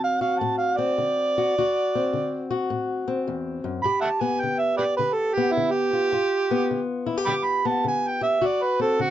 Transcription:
Already playing: steel-string acoustic guitar D3 C4 F#4
0.04 harmonica F5
0.21 steel-string acoustic guitar F#4, harmonica F5
0.39 steel-string acoustic guitar A2, harmonica A5
0.58 harmonica F5
0.77 steel-string acoustic guitar C4, harmonica D5
0.98 steel-string acoustic guitar D3
1.38 steel-string acoustic guitar F#4
1.58 steel-string acoustic guitar D2 F#4
1.95 steel-string acoustic guitar C4
2.13 steel-string acoustic guitar D3
2.51 steel-string acoustic guitar F#4
2.70 steel-string acoustic guitar A2
3.08 steel-string acoustic guitar C4
3.27 steel-string acoustic guitar E2
3.64 steel-string acoustic guitar F#2
3.83 steel-string acoustic guitar G2 G4, harmonica B5
4.01 harmonica E5 F#5 A5
4.20 steel-string acoustic guitar B3, harmonica G#5
4.40 steel-string acoustic guitar D3, harmonica G5
4.58 harmonica E5
4.77 harmonica G4 B4 D5, steel-string acoustic guitar G4
4.97 steel-string acoustic guitar D3, harmonica B4
5.13 harmonica A4
5.34 steel-string acoustic guitar B3, harmonica G4
5.52 harmonica E4
5.57 steel-string acoustic guitar D3
5.71 harmonica G4
5.93 steel-string acoustic guitar F4
6.12 steel-string acoustic guitar G2 F4
6.51 steel-string acoustic guitar B3
6.71 steel-string acoustic guitar D3
7.06 steel-string acoustic guitar E4
7.18 steel-string acoustic guitar G4
7.26 steel-string acoustic guitar D3, harmonica G5 B5 D6
7.44 harmonica B5
7.65 steel-string acoustic guitar B3, harmonica A5
7.84 steel-string acoustic guitar D3, harmonica G#5
8.08 harmonica G5
8.21 steel-string acoustic guitar G4, harmonica E5
8.41 steel-string acoustic guitar D2 F#4
8.46 harmonica D5
8.63 harmonica B4
8.80 steel-string acoustic guitar C4, harmonica A4
8.99 steel-string acoustic guitar D3, harmonica F#4

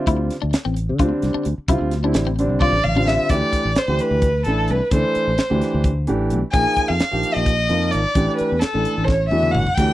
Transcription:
Already playing: grand piano D3 G3 C4 F4
0.07 fretless electric bass D2, clean electric guitar E4, kick, closed hi-hat
0.30 snare, closed hi-hat
0.42 fretless electric bass D2, clean electric guitar D4
0.53 snare, closed hi-hat
0.65 fretless electric bass A1, clean electric guitar C4
0.76 closed hi-hat
0.89 fretless electric bass D3
0.99 fretless electric bass D2, grand piano D3 G3 C4 D4, clean electric guitar F4, kick, closed hi-hat
1.22 fretless electric bass C2, snare, closed hi-hat
1.34 clean electric guitar D4
1.45 fretless electric bass D2, closed hi-hat
1.58 muted fretless electric bass stroke
1.68 fretless electric bass C2, grand piano D3 G3 C4 F4, clean electric guitar E4, kick, closed hi-hat
1.81 fretless electric bass D2
1.91 snare, closed hi-hat
2.03 grand piano D3 G3 C4 E4, clean electric guitar D4
2.14 fretless electric bass A1, snare, closed hi-hat
2.27 clean electric guitar C4
2.39 grand piano D3 G3 C4 D4, closed hi-hat
2.49 fretless electric bass C2
2.60 clean electric guitar F4, violin D5, kick, high tom
2.72 fretless electric bass A1
2.84 fretless electric bass A1, violin F5, mid tom
2.95 grand piano D3 G3 C4 F4, clean electric guitar D4, mid tom
3.07 violin E5, snare
3.29 fretless electric bass D2, grand piano E3 A3 D4 G4, violin D5, kick, closed hi-hat
3.53 muted fretless electric bass stroke, kick, closed hi-hat
3.65 fretless electric bass A1
3.76 violin C5, muted fretless electric bass stroke, snare, closed hi-hat
3.88 fretless electric bass D2, grand piano E3 A3 D4 G4
3.99 violin B4, closed hi-hat
4.11 fretless electric bass D2
4.22 kick, closed hi-hat
4.44 fretless electric bass A1, grand piano E3 A3 D4 E4, violin A4, closed hi-hat
4.68 fretless electric bass C2, violin B4, closed hi-hat
4.91 fretless electric bass D2, grand piano E3 A3 D4 A4, violin C5, kick, closed hi-hat
5.15 muted fretless electric bass stroke, closed hi-hat
5.27 fretless electric bass A1
5.38 muted fretless electric bass stroke, snare, closed hi-hat
5.50 fretless electric bass D2, grand piano E3 A3 D4 G4
5.62 snare, closed hi-hat
5.74 fretless electric bass D2
5.84 kick, closed hi-hat
6.07 fretless electric bass A1, grand piano E3 A3 D4 G4, closed hi-hat
6.30 fretless electric bass B1, closed hi-hat
6.52 fretless electric bass A#1, grand piano F3 A#3 D#4 G#4, violin G#5, kick, closed hi-hat
6.77 muted fretless electric bass stroke, kick, closed hi-hat
6.88 fretless electric bass F2, violin F5
7.00 muted fretless electric bass stroke, snare, closed hi-hat
7.11 fretless electric bass A#1, grand piano F3 A#3 D#4 G4
7.23 closed hi-hat
7.34 fretless electric bass A#1, violin D#5
7.46 kick, closed hi-hat
7.69 fretless electric bass F2, grand piano F3 A#3 D#4 F4, closed hi-hat
7.91 fretless electric bass G#1, violin D5, closed hi-hat
8.15 fretless electric bass A1, grand piano E3 A3 D4 G4, kick, closed hi-hat
8.37 violin B4, muted fretless electric bass stroke, closed hi-hat
8.52 fretless electric bass E2
8.59 violin A4, muted fretless electric bass stroke, snare, closed hi-hat
8.74 fretless electric bass A1, grand piano E3 A3 D4 A4
8.85 closed hi-hat
8.98 fretless electric bass A1
9.04 violin C#5, kick
9.09 snare
9.29 fretless electric bass E2, grand piano E3 A3 D4 F#4, violin E5, high tom
9.43 mid tom
9.51 fretless electric bass G1, violin F#5, mid tom
9.67 floor tom
9.75 fretless electric bass D2, grand piano E3 A3 D4, violin G5, kick, closed hi-hat, crash
9.79 grand piano G4

